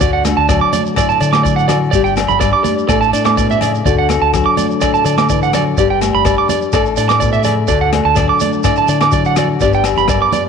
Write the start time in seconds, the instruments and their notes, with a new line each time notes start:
Already playing: nylon-string guitar D4
0.01 fingered electric bass D2, nylon-string guitar D3 F#4, clean electric guitar D5, kick, shekere
0.13 clean electric guitar F#5
0.25 nylon-string guitar D4, cross-stick, closed hi-hat, high conga, low agogo, shekere
0.37 fingered electric bass D2, clean electric guitar A5
0.49 nylon-string guitar F#3, clean electric guitar D5, kick, cross-stick, low agogo, shekere
0.61 clean electric guitar D6
0.73 clean electric guitar D5, closed hi-hat, high conga, low conga, shekere
0.86 shekere
0.96 nylon-string guitar A2, clean electric guitar D5, kick, cross-stick, low agogo, shekere
1.09 clean electric guitar A5, shekere
1.20 fingered electric bass D3, clean electric guitar D5, closed hi-hat, shekere
1.33 clean electric guitar D6, cross-stick, high conga, low agogo, shekere
1.43 nylon-string guitar F#3, clean electric guitar D5, kick, shekere
1.56 clean electric guitar F#5, shekere
1.68 nylon-string guitar F#4, clean electric guitar D5, cross-stick, closed hi-hat, low conga, low agogo, shekere
1.91 fingered electric bass G1, nylon-string guitar G2 G4, clean electric guitar D5, kick, shekere
2.04 clean electric guitar G5, shekere
2.17 nylon-string guitar D4, cross-stick, closed hi-hat, high conga, low agogo, shekere
2.28 fingered electric bass G1, clean electric guitar B5, low conga, shekere
2.40 nylon-string guitar G3, clean electric guitar D5, kick, cross-stick, low agogo, shekere
2.53 clean electric guitar D6
2.64 clean electric guitar D5, closed hi-hat, high conga, low conga, shekere
2.78 shekere
2.89 fingered electric bass A1, nylon-string guitar A2 A4, clean electric guitar D5, kick, cross-stick, high conga, low agogo, shekere
3.01 clean electric guitar A5, shekere
3.13 fingered electric bass A2, nylon-string guitar D4, clean electric guitar D5, closed hi-hat, shekere
3.25 clean electric guitar D6, cross-stick, high conga, low agogo, shekere
3.37 nylon-string guitar B2, clean electric guitar D5, kick, shekere
3.50 clean electric guitar E5, high conga, shekere
3.61 nylon-string guitar C#3, clean electric guitar D5, closed hi-hat, low conga, low agogo, shekere
3.75 shekere
3.85 fingered electric bass D2, nylon-string guitar D3 F#4, clean electric guitar D5, kick, shekere
3.98 clean electric guitar F#5
4.09 nylon-string guitar D4, cross-stick, closed hi-hat, high conga, low agogo, shekere
4.22 fingered electric bass D2, clean electric guitar A5
4.34 nylon-string guitar F#3, kick, cross-stick, low agogo, shekere
4.46 clean electric guitar D6
4.57 clean electric guitar D5, closed hi-hat, high conga, low conga, shekere
4.71 shekere
4.81 nylon-string guitar A2, clean electric guitar D5, kick, cross-stick, low agogo, shekere
4.94 clean electric guitar A5, shekere
5.05 fingered electric bass D3, clean electric guitar D5, closed hi-hat, shekere
5.18 clean electric guitar D6, cross-stick, high conga, low agogo, shekere
5.29 nylon-string guitar E3, clean electric guitar D5, kick, shekere
5.43 clean electric guitar F#5, shekere
5.53 nylon-string guitar F#3, clean electric guitar D5, cross-stick, closed hi-hat, low conga, low agogo, shekere
5.77 fingered electric bass G1, nylon-string guitar G2 G4, clean electric guitar D5, kick, shekere
5.90 clean electric guitar G5
6.01 nylon-string guitar D4, cross-stick, closed hi-hat, high conga, low agogo, shekere
6.14 fingered electric bass G1, clean electric guitar B5
6.25 nylon-string guitar G3, clean electric guitar D5, kick, cross-stick, low agogo, shekere
6.38 clean electric guitar D6
6.49 clean electric guitar D5, closed hi-hat, high conga, low conga, shekere
6.62 shekere
6.73 fingered electric bass A1, nylon-string guitar A2 A4, clean electric guitar D5, kick, cross-stick, low agogo, shekere
6.85 shekere
6.97 fingered electric bass A2, nylon-string guitar D4, clean electric guitar D5, closed hi-hat, shekere
7.09 clean electric guitar D6, cross-stick, high conga, low agogo, shekere
7.20 nylon-string guitar B2, clean electric guitar D5, kick, shekere
7.33 clean electric guitar E5, shekere
7.44 nylon-string guitar C#3, clean electric guitar D5, closed hi-hat, low conga, low agogo, shekere
7.67 fingered electric bass D2, nylon-string guitar D3 F#4, clean electric guitar D5, kick, shekere
7.81 clean electric guitar F#5
7.92 nylon-string guitar D4, cross-stick, closed hi-hat, high conga, low agogo
8.05 fingered electric bass D2, clean electric guitar A5
8.15 nylon-string guitar F#3, clean electric guitar D5, kick, cross-stick, low agogo, shekere
8.29 clean electric guitar D6
8.40 clean electric guitar D5, closed hi-hat, high conga, low conga, shekere
8.52 shekere
8.63 nylon-string guitar A2, clean electric guitar D5, kick, cross-stick, low agogo, shekere
8.76 clean electric guitar A5, shekere
8.88 fingered electric bass D3, clean electric guitar D5, closed hi-hat, shekere
9.01 clean electric guitar D6, cross-stick, high conga, low agogo, shekere
9.11 nylon-string guitar F#3, clean electric guitar D5, kick, shekere
9.25 clean electric guitar F#5, shekere
9.36 nylon-string guitar F#4, clean electric guitar D5, cross-stick, closed hi-hat, low conga, low agogo, shekere
9.60 fingered electric bass G1, nylon-string guitar G2 G3 B3 D4 G4, clean electric guitar D5, kick, shekere
9.73 clean electric guitar G5, shekere
9.84 nylon-string guitar D4, cross-stick, closed hi-hat, low agogo, shekere
9.97 fingered electric bass G1, clean electric guitar B5, low conga, shekere
10.08 nylon-string guitar F#2, clean electric guitar D5, kick, cross-stick, low agogo, shekere
10.22 clean electric guitar D6
10.32 nylon-string guitar G2, clean electric guitar D5, closed hi-hat, high conga, low conga, shekere